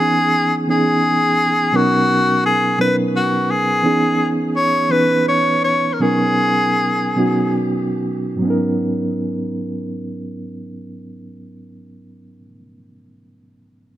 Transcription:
0.00 0.60 E3 medium
0.00 0.61 B3 medium
0.00 0.61 C#4 medium
0.00 0.62 D#4 medium
0.00 0.53 G#4 medium
0.00 0.62 G#4 medium
0.67 1.66 E3 medium
0.67 1.67 B3 medium
0.67 1.67 C#4 soft
0.67 1.68 D#4 medium
0.67 1.78 G#4 medium
0.67 1.68 G#4 medium
1.72 2.71 B2 medium
1.72 2.72 F#3 medium
1.72 2.72 B3 medium
1.72 2.72 C#4 medium
1.72 2.73 D#4 medium
1.72 2.45 F#4 medium
1.72 2.73 A#4 medium
2.45 2.77 G#4 medium
2.78 3.77 B2 medium
2.78 3.77 F#3 medium
2.78 3.77 B3 medium
2.78 3.78 C#4 medium
2.78 3.78 D#4 medium
2.78 2.86 A#4 medium
2.78 2.96 B4 medium
2.88 3.82 B4 medium
3.16 3.52 F#4 medium
3.51 4.28 G#4 loud
3.83 4.83 E3 medium
3.83 4.83 B3 medium
3.83 4.84 C#4 medium
3.83 4.84 D#4 medium
3.83 4.85 G#4 medium
4.56 4.93 C#5 medium
4.89 5.93 E3 medium
4.89 5.93 B3 soft
4.89 5.94 C#4 medium
4.89 5.94 D#4 medium
4.89 5.27 B4 medium
4.89 5.94 B4 medium
5.28 5.61 C#5 medium
5.64 5.95 C#5 medium
5.93 6.03 A#4 medium
5.99 7.09 B2 medium
5.99 7.09 F#3 medium
5.99 7.09 B3 medium
5.99 7.10 C#4 medium
5.99 7.10 D#4 medium
5.99 7.58 G#4 medium
5.99 7.10 A#4 medium
7.16 8.34 B2 medium
7.16 8.34 F#3 medium
7.16 8.34 B3 medium
7.16 8.35 C#4 medium
7.16 8.35 D#4 medium
7.16 8.35 F#4 medium
8.36 12.34 G#2 medium
8.36 12.37 F#3 medium
8.42 12.40 B3 medium
8.42 12.43 C#4 medium
8.47 12.45 D#4 medium
8.47 12.48 A#4 medium

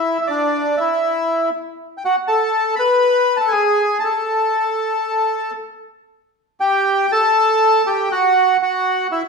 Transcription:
0.00 0.18 E4 medium
0.00 0.20 E5 medium
0.21 0.28 E5 medium
0.27 0.76 D4 medium
0.27 0.79 D5 medium
0.77 1.50 E4 medium
0.77 1.48 E5 medium
1.98 2.03 G5 medium
2.05 2.16 F#4 medium
2.05 2.16 F#5 medium
2.28 2.75 A4 medium
2.28 2.75 A5 medium
2.76 3.38 B4 medium
2.76 3.36 B5 loud
3.37 3.52 A4 medium
3.37 3.52 A5 medium
3.48 4.00 G#4 medium
3.48 3.97 G#5 medium
4.00 5.50 A5 medium
4.04 5.53 A4 medium
6.60 7.06 G4 medium
6.60 7.12 G5 medium
7.12 7.82 A4 medium
7.12 7.88 A5 loud
7.87 8.09 G4 medium
7.87 8.12 G5 medium
8.12 8.57 F#4 medium
8.12 8.57 F#5 loud
8.62 9.07 F#4 medium
8.62 9.07 F#5 medium
9.12 9.22 E4 medium
9.12 9.23 E5 medium

